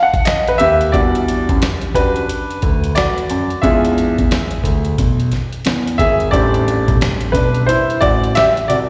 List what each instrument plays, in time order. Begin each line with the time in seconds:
0.03 grand piano F#5
0.14 kick, closed hi-hat
0.25 grand piano D#5, snare, closed hi-hat
0.47 grand piano B4, closed hi-hat
0.58 grand piano D#2 G4 E5, closed hi-hat
0.81 closed hi-hat
0.92 grand piano E2 G3 D4 F#4 D5, kick, closed hi-hat
1.15 closed hi-hat
1.28 closed hi-hat
1.49 grand piano F#2, kick, closed hi-hat
1.62 snare, closed hi-hat
1.81 closed hi-hat
1.95 grand piano F#2 D4 F#4 G4 B4, kick, closed hi-hat
2.16 closed hi-hat
2.29 closed hi-hat
2.51 closed hi-hat
2.62 grand piano D2, kick, closed hi-hat
2.84 closed hi-hat
2.95 grand piano F#4 D5, snare, closed hi-hat
3.18 closed hi-hat
3.30 grand piano F#2, closed hi-hat
3.50 closed hi-hat
3.62 grand piano E2 G#3 D4 F4 G#4 E5, kick, closed hi-hat
3.85 closed hi-hat
3.98 closed hi-hat
4.18 grand piano E2, kick, closed hi-hat
4.31 snare, closed hi-hat
4.51 closed hi-hat
4.64 grand piano D2, kick, closed hi-hat
4.85 closed hi-hat
4.98 grand piano B1, kick, closed hi-hat
5.20 closed hi-hat
5.32 snare, closed hi-hat
5.53 closed hi-hat
5.65 grand piano E2, snare, closed hi-hat
5.87 closed hi-hat
5.98 grand piano G#1 G#4 E5, kick, closed hi-hat
6.20 closed hi-hat
6.31 grand piano A1 G3 A3 C4 D4 G4 D5, kick, closed hi-hat
6.54 closed hi-hat
6.68 closed hi-hat
6.88 grand piano B1, kick, closed hi-hat
7.01 snare, closed hi-hat
7.21 closed hi-hat
7.32 grand piano B1 D4 B4, kick, closed hi-hat
7.55 closed hi-hat
7.66 grand piano E4 C5, closed hi-hat
7.90 closed hi-hat
8.01 grand piano A1 F#4 D5, kick, closed hi-hat
8.24 closed hi-hat
8.35 grand piano G4 E5, snare, closed hi-hat
8.57 closed hi-hat
8.68 grand piano C2 F#4 D5, closed hi-hat